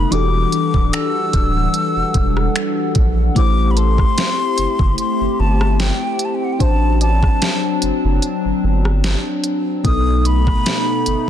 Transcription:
Already playing: A4 B5
0.11 E1 E3 G3 D4 F#4 G4 A4 F#5 D6, closed hi-hat
0.52 closed hi-hat
0.74 D1, kick
0.93 E6, finger snap, closed hi-hat
1.33 D1, kick, closed hi-hat
1.74 closed hi-hat
1.96 E1
2.14 E1, kick, closed hi-hat
2.37 cross-stick
2.56 finger snap, closed hi-hat
2.95 A#1, kick, closed hi-hat
3.35 A1 A3 C4 E4 G4 C5 D6, kick, closed hi-hat
3.71 B5
3.77 A4 C6, closed hi-hat
3.98 kick, cross-stick
4.18 snare, closed hi-hat
4.58 F#1, closed hi-hat
4.79 F#1, kick
4.98 C6, closed hi-hat
5.21 G1
5.39 G1 A5
5.61 cross-stick
5.80 G5, snare, closed hi-hat
6.19 closed hi-hat
6.25 A5
6.34 G5
6.44 F#5
6.53 G5
6.59 A1 F#3 D4 F#4 C5 A5, kick, closed hi-hat
7.01 D5 A5, closed hi-hat
7.23 kick, cross-stick
7.42 snare, closed hi-hat
7.82 F#1, closed hi-hat
8.04 F#1
8.22 closed hi-hat
8.45 G1
8.64 G1
8.85 cross-stick
9.04 snare, closed hi-hat
9.44 closed hi-hat
9.84 B1 B2 A3 B3 D#4 A4 D#6, kick, closed hi-hat
10.25 B5, closed hi-hat
10.47 kick, cross-stick
10.66 snare, closed hi-hat
11.06 G1, closed hi-hat

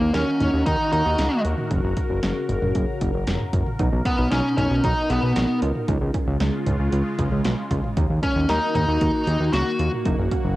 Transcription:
Already playing: D#3 A#3 F#4 A#4
0.01 D#2
0.14 D#2 C#4, snare, closed hi-hat
0.40 D#2, closed hi-hat, mid tom
0.53 D#2
0.66 D#2 D#4, kick, closed hi-hat
0.92 D#2 D#4, closed hi-hat
1.06 D#2
1.18 C#2, snare, closed hi-hat
1.45 D#2, closed hi-hat
1.58 mid tom
1.71 F#1 C#3, kick, closed hi-hat
1.84 F#1
1.97 kick, closed hi-hat
2.10 F#1
2.23 F#1, snare, closed hi-hat
2.49 F#1, closed hi-hat, mid tom
2.62 F#1, mid tom
2.75 F#1, kick, closed hi-hat
3.01 F#1, kick, closed hi-hat
3.14 F#1
3.27 F1, snare, closed hi-hat
3.40 mid tom
3.53 F#1, kick, closed hi-hat
3.66 mid tom
3.79 B1 B2 D#4, kick, closed hi-hat
3.92 B1
4.05 B3 C#4, kick, closed hi-hat
4.18 B1
4.32 B1 C#4 D#4, snare, closed hi-hat
4.58 B1 C#4 D#4, closed hi-hat, mid tom
4.71 B1
4.84 B1 D#4 F#4, kick, closed hi-hat
5.10 B1 B3 G#4, closed hi-hat
5.23 B1
5.36 A#1 F#4, snare, closed hi-hat
5.62 C#2 F4, closed hi-hat
5.75 mid tom
5.88 C#2 C#3 G#3 D#4 F4, kick, closed hi-hat
6.01 C#2
6.14 C#4, kick, closed hi-hat
6.27 C#2
6.40 C#2 D#4, snare, closed hi-hat
6.66 C#2 D#4, closed hi-hat, mid tom
6.79 C#2
6.92 C#2 F4, closed hi-hat
7.19 C#2 G#4, kick, closed hi-hat
7.32 C#2
7.44 B1 F#4, snare, closed hi-hat
7.71 C#2 F4, kick, closed hi-hat
7.84 mid tom
7.97 D#2 D#3 A#3 D#4 F#4, kick, closed hi-hat
8.10 D#2
8.23 C#4, kick, closed hi-hat
8.36 D#2
8.49 D#2 D#4, snare, closed hi-hat
8.75 D#2 D#4, closed hi-hat, mid tom
8.88 D#2
9.01 D#2 F#4, kick, closed hi-hat
9.27 D#2 G#4, closed hi-hat
9.40 D#2
9.53 C#2 F#4, snare, closed hi-hat
9.79 D#2 F4, closed hi-hat
9.93 mid tom
10.06 F#1 C#3 D#4, kick, closed hi-hat
10.19 F#1
10.31 C#4, kick, closed hi-hat
10.45 F#1

